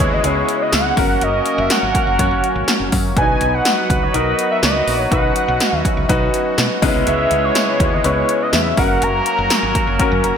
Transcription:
Already playing: analog synth pad C#3 G#3 B3 E4 F#4, grand piano G#3 B3 C#4 E4 B4, horn section G#3 C#4 E4 G#4, analog synth lead C#5
0.00 fretless electric bass D#2, kick, closed hi-hat
0.13 analog synth lead D#5
0.23 fretless electric bass C#2, grand piano G#3 B3 C#4 E4 G#4, analog synth lead C#5, closed hi-hat
0.49 closed hi-hat
0.62 analog synth lead D#5
0.72 fretless electric bass C#2, analog synth lead F#5, snare, closed hi-hat, tambourine
0.97 fretless electric bass F#1, analog synth pad F#3 A#3 C#4, horn section A#3 C#4 F#4 A#4, grand piano C#4 F#4 A#4, kick, open hi-hat
1.21 fretless electric bass F#1, analog synth lead D#5, closed hi-hat
1.46 closed hi-hat
1.58 fretless electric bass F#1, analog synth lead E5
1.70 analog synth lead F#5, snare, closed hi-hat, tambourine
1.83 fretless electric bass G#1
1.95 kick, closed hi-hat
2.07 fretless electric bass F#1
2.19 fretless electric bass F#2, grand piano C#4 F#4 C#5, kick, closed hi-hat
2.31 fretless electric bass F#1
2.44 closed hi-hat
2.55 fretless electric bass G#1
2.68 snare, closed hi-hat, tambourine
2.80 fretless electric bass F#1
2.92 fretless electric bass F#2, kick, open hi-hat
3.16 fretless electric bass B1, analog synth pad B3 F#4, horn section B3 D#4 F#4 B4, grand piano D4 F#4 B4, analog synth lead G#5, kick, closed hi-hat
3.22 grand piano D#4
3.41 fretless electric bass B1, closed hi-hat
3.55 analog synth lead F#5
3.65 snare, closed hi-hat, tambourine
3.90 fretless electric bass C#2, kick, closed hi-hat
4.03 analog synth lead C#5
4.14 fretless electric bass B1, grand piano D#4 F#4 A#4, analog synth lead D#5, closed hi-hat
4.39 closed hi-hat
4.52 analog synth lead E5
4.63 fretless electric bass C#2, analog synth lead D#5, snare, closed hi-hat, tambourine
4.87 fretless electric bass A#1, open hi-hat
5.11 fretless electric bass B1, analog synth pad C#4, grand piano D#4 F#4 B4, analog synth lead F#5, kick, closed hi-hat
5.36 closed hi-hat
5.48 fretless electric bass B1
5.60 snare, closed hi-hat, tambourine
5.73 fretless electric bass D#2
5.79 analog synth lead E5
5.85 kick, closed hi-hat
5.97 fretless electric bass C#2
6.09 fretless electric bass B1, grand piano D#4 F#4 B4, kick, closed hi-hat
6.34 closed hi-hat
6.58 fretless electric bass B2, snare, closed hi-hat, tambourine
6.82 fretless electric bass C#2, analog synth pad C#3 G#3 B3 E4, grand piano G#3 B3 C#4 D#4 B4, horn section C#4 E4 G#4 C#5, kick, open hi-hat
6.89 grand piano E4
6.94 fretless electric bass C2
7.07 fretless electric bass C#2, analog synth lead E5, closed hi-hat
7.31 fretless electric bass C#2, closed hi-hat
7.45 analog synth lead C#5
7.55 snare, closed hi-hat, tambourine
7.80 fretless electric bass D#2, kick, closed hi-hat
7.93 analog synth lead D#5
8.04 fretless electric bass C#2, grand piano G#3 B3 C#4 E4 B4, analog synth lead C#5, closed hi-hat
8.29 closed hi-hat
8.42 analog synth lead D#5
8.53 fretless electric bass E2, analog synth lead E5, snare, closed hi-hat, tambourine
8.77 fretless electric bass F#1, analog synth pad F#3 A#3 C#4, horn section A#3 C#4 F#4 A#4, grand piano C#4 F#4 A#4, analog synth lead F#5, kick, open hi-hat
9.02 fretless electric bass F#1, analog synth lead A#5, closed hi-hat
9.26 closed hi-hat
9.39 fretless electric bass F#1
9.50 snare, closed hi-hat, tambourine
9.63 fretless electric bass G#1
9.75 kick, closed hi-hat
9.87 fretless electric bass F#1
9.99 grand piano C#4 F#4 A#4, kick, closed hi-hat
10.12 fretless electric bass F#2
10.24 fretless electric bass F#1, grand piano A#5, closed hi-hat

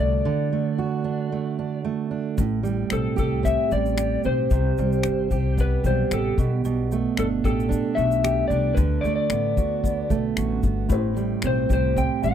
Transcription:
Already playing: steel-string acoustic guitar D3 A3 F#4
0.00 upright bass C2, steel-string acoustic guitar D4, electric slide guitar D5
0.25 steel-string acoustic guitar D3
0.53 steel-string acoustic guitar A3
0.79 steel-string acoustic guitar F#4
1.04 steel-string acoustic guitar D4
1.32 steel-string acoustic guitar A3
1.59 steel-string acoustic guitar D4
1.85 steel-string acoustic guitar A3
2.11 steel-string acoustic guitar D4
2.38 upright bass A1, steel-string acoustic guitar A2, kick, shaker
2.63 steel-string acoustic guitar G3, shaker
2.90 upright bass B1, steel-string acoustic guitar C4, electric slide guitar A4, finger snap, shaker
3.16 upright bass C2, steel-string acoustic guitar G4, electric slide guitar A4, kick, shaker
3.43 steel-string acoustic guitar C4, electric slide guitar E5, kick, shaker
3.71 upright bass A1, steel-string acoustic guitar G3, electric slide guitar D5, shaker
3.86 shaker
3.97 steel-string acoustic guitar G4, finger snap, shaker
4.23 upright bass B1, steel-string acoustic guitar C4, electric slide guitar C5, shaker
4.50 upright bass C2, steel-string acoustic guitar C3, kick, shaker
4.78 upright bass C2, steel-string acoustic guitar G3, shaker
4.92 shaker
5.03 upright bass G1, finger snap, shaker
5.31 upright bass C2, steel-string acoustic guitar G4, kick, shaker
5.58 steel-string acoustic guitar B3, electric slide guitar B4, kick, shaker
5.84 upright bass B1, steel-string acoustic guitar G3, electric slide guitar C5, kick, shaker
6.11 upright bass A1, steel-string acoustic guitar G4, electric slide guitar A4, finger snap, shaker
6.38 upright bass B1, steel-string acoustic guitar B2, kick, shaker
6.65 steel-string acoustic guitar B2, shaker
6.91 steel-string acoustic guitar A3, shaker
7.17 upright bass G1, steel-string acoustic guitar D4, electric slide guitar A4, finger snap, shaker
7.44 upright bass A1, steel-string acoustic guitar G4, electric slide guitar A4, kick, shaker
7.60 shaker
7.69 steel-string acoustic guitar D4, kick, shaker
7.95 upright bass B1, steel-string acoustic guitar A3, electric slide guitar E5, shaker
8.11 shaker
8.24 steel-string acoustic guitar G4, finger snap, shaker
8.48 upright bass C2, steel-string acoustic guitar D4, electric slide guitar D5, shaker
8.75 upright bass D2, steel-string acoustic guitar D3, electric slide guitar B4, kick, shaker
9.01 upright bass D2, steel-string acoustic guitar A3, electric slide guitar D5, shaker
9.16 electric slide guitar D5
9.30 upright bass A1, steel-string acoustic guitar B3, finger snap, shaker
9.57 upright bass D2, steel-string acoustic guitar F#4, kick, shaker
9.84 steel-string acoustic guitar B3, kick, shaker
10.10 upright bass B1, steel-string acoustic guitar A3, kick, shaker
10.37 upright bass A1, steel-string acoustic guitar F#4, finger snap, shaker
10.63 upright bass G1, steel-string acoustic guitar B3, kick, shaker
10.88 upright bass A1, steel-string acoustic guitar A2, felt piano A3 E4 G4 C5, kick, shaker
11.17 steel-string acoustic guitar G3, shaker
11.42 upright bass B1, steel-string acoustic guitar C4, finger snap, shaker
11.47 electric slide guitar C5
11.69 upright bass C2, steel-string acoustic guitar G4, kick, shaker
11.73 electric slide guitar C5
11.96 steel-string acoustic guitar C4, electric slide guitar G5, kick, shaker
12.23 upright bass A1, steel-string acoustic guitar G3, electric slide guitar F#5, shaker

